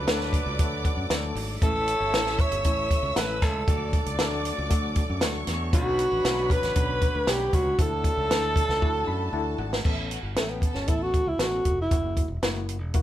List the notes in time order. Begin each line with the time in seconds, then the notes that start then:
Already playing: F#3 A3 D4 A4 B4 D5 D6
0.07 D2 A3 D4 F#4 A4, snare, closed hi-hat
0.21 snare
0.33 kick, closed hi-hat
0.46 C#2
0.59 D2 A3 D4 F#4 A4, kick, closed hi-hat
0.85 F#5, kick, closed hi-hat
0.97 F#2
1.10 D2 A3 D4 F#4 A4 A5, snare, closed hi-hat
1.35 G#1, open hi-hat
1.61 A1 E3 A3 C#4 E4 A4 C#5 E5 E6, kick, closed hi-hat
1.88 closed hi-hat
2.00 G1
2.13 A1 A3 C#4 E4 A4, snare, closed hi-hat
2.26 snare
2.39 C#5, kick, closed hi-hat
2.51 G1, closed hi-hat
2.64 A1 A3 C#4 E4 A4, kick, closed hi-hat
2.91 kick, closed hi-hat
3.03 C#2
3.16 A1 A3 C#4 E4 A4 B4, snare, closed hi-hat
3.42 C#2 A4, kick, snare, closed hi-hat
3.68 D2 F#3 A3 D4 F#4 A4 D5 D6, kick, closed hi-hat
3.93 kick, closed hi-hat
4.06 C#2, closed hi-hat
4.19 D2 A3 D4 F#4 A4, snare, closed hi-hat
4.45 closed hi-hat
4.58 C#2
4.70 D2 A3 D4 F#4 A4, kick, closed hi-hat
4.95 kick, closed hi-hat
5.10 F#2
5.21 D2 A3 D4 F#4 A4 C#5 C#6, snare, closed hi-hat
5.47 E2, snare, closed hi-hat
5.72 B1 D3 F#3 B3 C#4 D4 F#4 B4 C#5 B5, kick, closed hi-hat
5.99 closed hi-hat
6.12 A1
6.25 B1 C#4 D4 F#4 B4, snare, closed hi-hat
6.50 B4, kick, closed hi-hat
6.62 A1, snare, closed hi-hat
6.75 B1 C#4 D4 F#4 B4, kick, closed hi-hat
7.02 kick, closed hi-hat
7.15 D2
7.27 B1 C#4 D4 F#4 G4 B4, snare, closed hi-hat
7.53 C#2 F#4, kick, closed hi-hat
7.78 D2 E3 F#3 A3 D4 E4 F#4 A4 A5, kick, closed hi-hat
7.82 A4
8.04 kick, closed hi-hat
8.17 C#2
8.30 D2 D4 E4 F#4 A4, snare, closed hi-hat
8.56 kick, closed hi-hat
8.69 C#2, snare
8.82 D2 D4 E4 F#4 A4, kick
9.07 F#2 B5
9.33 D2 D4 E4 F#4 A4 A5
9.58 G#1 F#5
9.73 snare
9.84 A1 B3 C#4 E4 A4 E5, kick, crash
10.11 F#4 F#5, closed hi-hat
10.23 G1
10.35 A1 A3 B3 C#4 G4 A4 G5, snare, closed hi-hat
10.50 B3
10.62 A4 A5, kick, closed hi-hat
10.74 G1 C#4, snare
10.87 A1 B3 C#4 E4 A4, kick, closed hi-hat
11.03 F#4
11.14 kick, closed hi-hat
11.26 C#2 E4
11.38 A1 B3 C#4 F#4 A4, snare, closed hi-hat
11.65 F1, kick, closed hi-hat
11.82 E4
11.91 F#1 A#3 E4 F#4, kick, closed hi-hat
12.17 kick, closed hi-hat
12.28 E1
12.42 F#1 A#3 E4 F#4, snare, closed hi-hat
12.69 closed hi-hat
12.81 E1
12.94 A#3 E4 F#4, kick, closed hi-hat